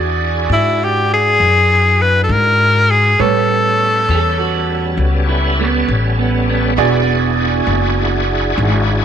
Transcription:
0.00 0.47 E2 medium
0.00 3.14 D4 medium
0.00 3.15 E4 medium
0.00 3.15 F#4 medium
0.00 3.15 G#4 medium
0.00 3.15 D5 medium
0.49 1.36 G#2 medium
0.49 0.85 E4 medium
0.84 1.11 G4 medium
1.14 2.03 G#4 loud
1.40 2.27 F#2 medium
2.02 2.23 B4 medium
2.24 2.34 A4 medium
2.29 3.16 G#2 medium
2.29 2.92 A#4 medium
2.91 3.23 G#4 medium
3.17 4.06 A2 medium
3.17 6.74 G3 medium
3.17 6.74 B3 medium
3.17 6.74 C#4 medium
3.17 6.74 A4 medium
3.17 5.00 A4 medium
3.17 6.74 B4 soft
3.17 6.75 C#5 medium
4.09 4.96 E2 medium
4.09 4.39 A4 medium
4.39 5.26 F#4 medium
4.97 5.85 C#2 medium
5.29 5.58 E4 medium
5.60 5.88 B3 medium
5.88 6.75 A1 medium
6.19 6.48 B3 medium
6.49 8.24 B3 medium
6.76 7.65 E1 medium
6.76 9.05 D4 medium
6.76 9.05 E4 medium
6.76 9.05 F#4 medium
6.76 9.05 G#4 medium
6.76 9.05 D5 medium
7.67 8.54 F#1 medium
8.58 9.05 G#1 medium

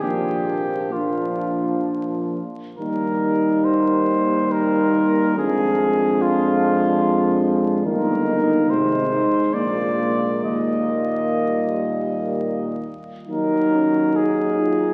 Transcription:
0.01 2.39 A#1 soft
0.01 0.91 F3 soft
0.01 0.91 A#3 soft
0.01 0.77 D4 soft
0.01 0.94 G4 medium
0.92 2.41 F3 soft
0.92 2.40 A#3 soft
0.92 2.41 D4 soft
0.92 1.86 F4 soft
2.77 5.39 D#2 soft
2.77 5.40 G3 soft
2.77 5.34 A#3 soft
2.77 5.34 D#4 soft
2.77 3.66 A#4 medium
3.65 4.53 C5 medium
4.52 5.37 A#4 medium
5.37 7.85 F2 medium
5.37 7.88 F3 soft
5.37 7.82 G#3 medium
5.37 7.81 D4 medium
5.37 6.23 G#4 medium
6.22 7.45 F4 medium
7.86 8.71 G1 medium
7.86 8.68 D#3 soft
7.86 8.71 A#3 medium
7.86 9.51 D#4 soft
7.86 8.72 A#4 medium
8.69 9.26 G#1 soft
8.69 9.25 C3 soft
8.69 11.09 G#3 soft
8.69 9.56 C5 medium
9.54 10.45 A#1 soft
9.54 12.92 A#2 soft
9.54 12.95 A#3 soft
9.54 10.44 D5 medium
10.44 12.95 D#2 soft
10.44 12.80 D#5 soft
11.39 12.91 G3 soft
13.28 14.94 D#2 soft
13.28 14.94 F#3 soft
13.28 13.75 D#4 medium
13.28 14.94 D#4 soft
13.28 14.18 A#4 medium
13.73 14.15 C#4 soft
14.16 14.61 D#4 soft
14.16 14.94 G#4 medium
14.59 14.94 F4 soft

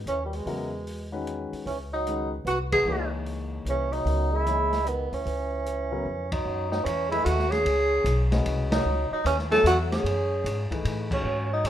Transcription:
0.06 0.43 D#2 medium
0.06 0.23 E3 medium
0.06 0.23 C#4 medium
0.06 closed hi-hat soft
0.23 0.34 A#2 soft
0.23 0.36 G3 soft
0.33 1.12 B2 medium
0.33 1.14 G#3 medium
0.33 open hi-hat soft
0.46 1.48 E2 medium
0.46 0.70 C#3 medium
0.46 0.70 F#3 soft
0.46 0.70 B3 medium
0.46 0.70 E4 medium
0.46 0.70 A#4 medium
0.46 open hi-hat soft
0.87 open hi-hat soft
1.12 1.63 D#3 medium
1.12 1.63 G#3 medium
1.12 1.63 C#4 medium
1.12 1.64 F#4 medium
1.12 1.64 B4 medium
1.27 closed hi-hat soft
1.53 muted upright bass stroke soft
1.53 open hi-hat soft
1.66 2.42 C#2 medium
1.66 1.78 E3 medium
1.66 1.79 C#4 medium
1.66 open hi-hat soft
1.92 2.29 F#3 medium
1.92 2.30 D#4 medium
2.07 2.30 D#3 medium
2.07 2.30 G#3 medium
2.07 2.30 C#4 soft
2.07 2.30 F#4 medium
2.07 2.30 B4 medium
2.07 closed hi-hat soft
2.45 2.83 C2 medium
2.45 2.57 B3 medium
2.45 2.59 F#4 medium
2.45 closed hi-hat soft
2.72 3.09 B3 medium
2.72 3.10 G#4 medium
2.72 kick medium
2.72 ride medium
2.85 3.62 C#2 medium
2.85 3.98 E3 medium
2.85 3.98 A#3 medium
2.85 3.98 D#4 soft
2.85 3.98 G#4 soft
2.85 3.98 C#5 medium
3.26 open hi-hat soft
3.65 4.03 C2 medium
3.65 3.94 E3 medium
3.65 closed hi-hat soft
3.70 3.95 C#4 medium
3.93 4.35 F#3 medium
3.93 4.37 D#4 medium
3.93 open hi-hat soft
4.05 5.07 C#2 medium
4.05 4.45 C#3 soft
4.05 4.45 F#3 soft
4.05 4.45 B3 soft
4.05 4.45 E4 soft
4.05 4.45 A#4 soft
4.05 open hi-hat soft
4.33 4.88 G#3 medium
4.33 4.90 E4 medium
4.46 4.69 E3 soft
4.46 4.70 A#3 soft
4.46 4.70 D#4 soft
4.46 4.70 G#4 soft
4.46 4.70 C#5 medium
4.46 closed hi-hat soft
4.72 snare soft
4.72 open hi-hat soft
4.86 5.14 D#3 medium
4.86 5.15 B3 medium
4.86 closed hi-hat soft
5.12 5.25 D2 medium
5.12 6.31 E3 medium
5.12 6.32 C#4 medium
5.12 open hi-hat soft
5.26 6.01 C#2 medium
5.26 open hi-hat soft
5.66 closed hi-hat soft
5.92 6.04 C#3 medium
5.92 6.04 F#3 medium
5.92 6.04 B3 medium
5.92 6.04 E4 medium
5.92 6.04 A#4 medium
6.06 6.43 F2 medium
6.31 6.68 F#3 medium
6.31 6.69 D#4 medium
6.31 kick medium
6.31 ride medium
6.45 6.84 F#2 medium
6.70 6.84 F#3 medium
6.70 6.86 D#4 medium
6.70 snare soft
6.83 7.24 E2 medium
6.83 7.08 E3 medium
6.83 7.11 C#4 medium
6.83 hi-hat pedal medium
6.83 ride medium
7.08 7.24 E3 medium
7.08 7.25 G#3 medium
7.08 7.24 A3 medium
7.08 7.24 D#4 medium
7.08 7.26 E4 medium
7.08 ride soft
7.13 7.24 G#4 medium
7.13 7.25 B4 medium
7.24 7.64 D#2 medium
7.24 7.50 A3 medium
7.24 7.53 F#4 medium
7.24 hi-hat pedal soft
7.24 ride medium
7.39 snare soft
7.49 8.30 C#4 medium
7.49 8.31 G#4 loud
7.49 snare soft
7.49 ride soft
7.65 8.04 C#2 medium
7.65 ride medium
8.04 8.43 B1 medium
8.04 hi-hat pedal medium
8.04 ride medium
8.31 8.82 G#3 medium
8.31 8.82 C#4 medium
8.31 8.82 F#4 medium
8.31 8.82 B4 medium
8.31 8.83 D#5 medium
8.31 snare soft
8.31 ride soft
8.46 8.84 C2 medium
8.46 ride medium
8.71 9.08 F#3 medium
8.71 9.09 D#4 medium
8.71 snare medium
8.71 ride medium
8.85 9.09 C#2 medium
9.10 9.23 F#3 medium
9.10 9.25 D#4 medium
9.10 muted upright bass stroke soft
9.24 9.63 D#2 medium
9.24 9.36 E3 medium
9.24 9.38 C#4 medium
9.24 hi-hat pedal medium
9.24 ride medium
9.39 snare soft
9.51 10.02 F#3 medium
9.51 10.02 B3 medium
9.51 9.64 C#4 medium
9.51 10.02 E4 medium
9.51 10.02 A4 medium
9.51 9.64 A4 loud
9.51 10.02 C#5 medium
9.51 snare soft
9.51 ride soft
9.64 10.03 E2 medium
9.64 9.76 A3 medium
9.64 9.78 F#4 medium
9.64 hi-hat pedal medium
9.64 ride medium
9.91 10.67 C#4 medium
9.91 10.67 G#4 medium
9.91 snare soft
9.91 ride soft
10.04 10.43 F#2 medium
10.04 ride medium
10.44 10.68 G#2 medium
10.44 hi-hat pedal soft
10.44 ride medium
10.71 11.22 E3 medium
10.71 11.22 A3 soft
10.71 11.22 D#4 medium
10.71 11.22 G#4 medium
10.71 11.22 B4 medium
10.71 muted upright bass stroke soft
10.71 kick medium
10.71 ride soft
10.85 11.23 A2 medium
10.85 ride medium
11.11 11.48 F#3 medium
11.11 11.49 C#4 medium
11.11 kick medium
11.11 crash medium
11.24 11.63 G#2 medium
11.51 11.65 F#3 medium
11.51 11.69 D#4 medium
11.64 11.70 F#2 medium
11.64 11.70 F#3 medium
11.64 hi-hat pedal medium
11.64 ride medium

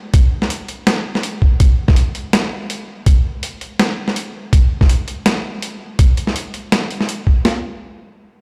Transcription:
0.14 kick loud
0.14 closed hi-hat medium
0.42 snare soft
0.50 closed hi-hat medium
0.68 closed hi-hat soft
0.87 snare loud
0.87 closed hi-hat medium
1.15 snare soft
1.23 closed hi-hat medium
1.42 kick medium
1.60 kick loud
1.60 closed hi-hat medium
1.88 kick loud
1.88 snare soft
1.96 closed hi-hat medium
2.15 closed hi-hat soft
2.33 snare loud
2.33 closed hi-hat medium
2.70 closed hi-hat medium
3.06 kick loud
3.06 closed hi-hat medium
3.43 closed hi-hat medium
3.61 closed hi-hat soft
3.79 snare loud
3.79 closed hi-hat medium
4.08 snare soft
4.16 closed hi-hat medium
4.53 kick loud
4.53 closed hi-hat medium
4.81 kick medium
4.81 snare soft
4.89 closed hi-hat medium
5.08 closed hi-hat soft
5.26 snare loud
5.26 closed hi-hat medium
5.62 closed hi-hat medium
5.99 kick loud
5.99 closed hi-hat medium
6.17 closed hi-hat soft
6.27 snare soft
6.36 closed hi-hat medium
6.54 closed hi-hat soft
6.72 snare loud
6.72 closed hi-hat medium
6.91 closed hi-hat soft
7.01 snare soft
7.09 closed hi-hat medium
7.27 kick medium
7.45 snare medium

